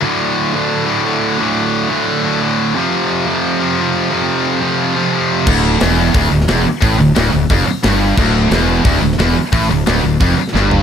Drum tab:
CC |----------------|----------------|----------------|----------------|
HH |----------------|----------------|----------------|----------------|
SD |----------------|----------------|----------------|----------------|
FT |----------------|----------------|----------------|----------------|
BD |----------------|----------------|----------------|----------------|

CC |x---------------|----------------|x---------------|----------------|
HH |----o---o---o---|o---o---o---o---|----o---o---o---|o---o---o-------|
SD |----o------oo---|----o-------o---|----o------oo---|----o------oo---|
FT |----------------|----------------|----------------|--------------o-|
BD |o-------o-------|o-------o-------|o-------o-------|o-------o-------|